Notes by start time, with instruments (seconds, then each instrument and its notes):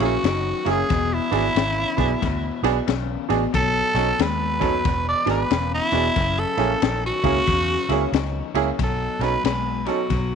0.00 fingered electric bass A#1, clean electric guitar F#2 C#3, grand piano A#3 C#4 E4 G#4, snare, ride
0.05 tenor saxophone F#4
0.24 fingered electric bass F#1, clean electric guitar F#2 D#3, snare, ride
0.65 fingered electric bass F#1, clean electric guitar F#2 C#3, grand piano A#3 C#4 E4 G#4, snare, ride
0.71 tenor saxophone G#4
0.89 fingered electric bass E1, clean electric guitar E2 B2, kick, snare, ride
1.14 tenor saxophone E4
1.31 fingered electric bass G#1, clean electric guitar E2 B2, grand piano B3 D4 F#4 G#4, snare, ride
1.55 fingered electric bass G#1, clean electric guitar E2 C#3, snare, ride
1.97 fingered electric bass B1, clean electric guitar E2 B2, grand piano B3 D4 F#4 G#4, kick, snare, ride
2.21 fingered electric bass D2, clean electric guitar E2 B2, kick, snare, ride
2.63 fingered electric bass B1, clean electric guitar E2 B2, grand piano B3 D4 F#4 G#4, snare, ride
2.86 fingered electric bass B1, clean electric guitar E2 C#3, snare, ride
3.29 fingered electric bass A1, clean electric guitar E2 B2, grand piano B3 D4 F#4 G#4, snare, ride
3.53 fingered electric bass B1, clean electric guitar B2 F#3, tenor saxophone A4, kick, snare, ride
3.94 fingered electric bass B1, clean electric guitar B2 F#3, grand piano C#4 D#4 F#4 A4, snare, ride
4.19 fingered electric bass D#2, clean electric guitar B2 G#3, tenor saxophone B4, snare, ride
4.60 clean electric guitar B2 F#3, grand piano C#4 D#4 F#4 A4, kick, snare, ride
4.85 fingered electric bass E1, clean electric guitar E2 B2, kick, snare, ride
5.08 tenor saxophone D5
5.26 fingered electric bass G#1, clean electric guitar E2 B2, grand piano B3 D4 F#4 G#4, snare, ride
5.30 tenor saxophone B4
5.50 fingered electric bass E1, clean electric guitar E2 C#3, snare, ride
5.74 tenor saxophone E4
5.92 fingered electric bass E1, clean electric guitar E2 B2, grand piano B3 D4 F#4 G#4, snare, ride
6.16 fingered electric bass F#1, clean electric guitar F#2 C#3, kick, snare, ride
6.39 tenor saxophone A4
6.57 fingered electric bass A#1, clean electric guitar F#2 C#3, grand piano A#3 C#4 E4 G#4, snare, ride
6.82 fingered electric bass A#1, clean electric guitar F#2 D#3, snare, ride
7.06 tenor saxophone F#4
7.23 fingered electric bass C#2, clean electric guitar F#2 C#3, grand piano A#3 C#4 E4 G#4, kick, snare, ride
7.46 fingered electric bass E2, clean electric guitar F#2 C#3, kick, snare, ride
7.89 fingered electric bass C#2, clean electric guitar F#2 C#3, grand piano A#3 C#4 E4 G#4, snare, ride
8.12 fingered electric bass C#2, clean electric guitar F#2 D#3, snare, ride
8.54 fingered electric bass C#2, clean electric guitar F#2 C#3, grand piano A#3 C#4 E4 G#4, snare, ride
8.78 fingered electric bass B1, clean electric guitar B2 F#3, kick, snare, ride
8.83 tenor saxophone A4
9.19 fingered electric bass B1, clean electric guitar B2 F#3, grand piano C#4 D#4 F#4 A4, tenor saxophone B4, snare, ride
9.44 fingered electric bass B1, clean electric guitar B2 G#3, tenor saxophone B4, snare, ride
9.85 clean electric guitar B2 F#3, grand piano C#4 D#4 F#4 A4, tenor saxophone F#4, snare, ride
10.10 fingered electric bass B1, clean electric guitar B2 F#3, kick, snare, ride